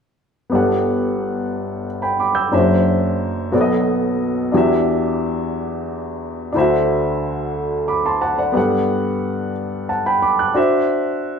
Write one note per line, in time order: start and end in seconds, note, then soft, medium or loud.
0.50 2.49 G1 soft
0.50 2.49 G2 soft
0.50 2.48 B3 soft
0.50 2.49 G4 soft
0.50 2.49 A4 soft
0.55 1.85 F#5 soft
2.02 2.18 G5 soft
2.02 2.18 B5 soft
2.20 2.35 B5 soft
2.20 2.35 D6 soft
2.35 2.67 E6 soft
2.35 2.67 G6 soft
2.52 3.49 F#1 medium
2.52 3.49 F#2 soft
2.52 3.53 D4 soft
2.52 2.59 E4 soft
2.52 3.53 C5 soft
2.52 3.54 E5 medium
2.59 3.51 F#4 soft
3.52 4.50 B1 soft
3.52 4.50 B2 soft
3.52 4.53 B3 soft
3.52 4.52 F#4 soft
3.52 4.54 A4 soft
3.52 3.60 D5 soft
3.61 4.57 D#5 medium
4.52 6.51 E2 soft
4.52 6.51 E3 soft
4.52 6.50 D4 soft
4.52 6.51 F#4 soft
4.52 6.51 G4 soft
4.57 6.53 E5 medium
6.53 8.52 D2 soft
6.53 8.52 D3 medium
6.53 8.51 D4 medium
6.53 6.61 E4 soft
6.53 8.52 C5 soft
6.58 8.55 F#4 soft
6.58 7.88 E5 medium
7.88 8.05 B5 soft
7.88 8.04 D6 soft
8.06 8.20 A5 soft
8.06 8.22 C6 soft
8.21 8.37 F#5 soft
8.21 8.38 A5 soft
8.39 8.71 D5 soft
8.39 8.55 F#5 soft
8.52 9.52 G2 soft
8.52 10.51 B3 soft
8.52 10.52 G4 soft
8.52 10.53 A4 soft
8.57 9.88 F#5 medium
9.89 10.06 F#5 soft
9.89 10.06 A5 soft
10.06 10.23 G5 soft
10.06 10.21 B5 medium
10.22 10.39 B5 soft
10.22 10.39 D6 soft
10.39 10.72 D6 soft
10.39 10.72 F#6 soft
10.54 11.39 D4 medium
10.54 11.39 F#4 soft
10.54 11.39 C5 soft
10.54 11.39 E5 medium